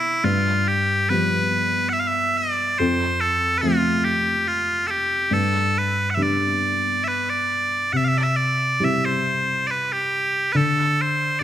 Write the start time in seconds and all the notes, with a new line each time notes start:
Already playing: C3 B3 C4 E4
0.24 G2 F4
0.68 G4
1.09 F3 G3 B3 B4
1.89 E5 F#5
2.00 F5
2.07 E5
2.37 D5
2.79 F2 C5
3.20 A4
3.58 F4 B4
3.63 F3 A3 C4
4.04 G4
4.47 F4
4.87 G4 A4
5.31 G2 A4
5.78 B4
6.10 F#5
6.15 G3 B3 D4 E5
6.22 D5
7.04 E5
7.08 B4
7.30 D5
7.93 C3 F#5
7.97 E5
8.05 E5 F5
8.17 D5
8.23 E5
8.36 D5
8.80 G3 C4 E4 E5
9.05 C5
9.67 B4 D5
9.92 G4
10.52 D3 B4
10.56 A4
11.01 C5
11.39 D5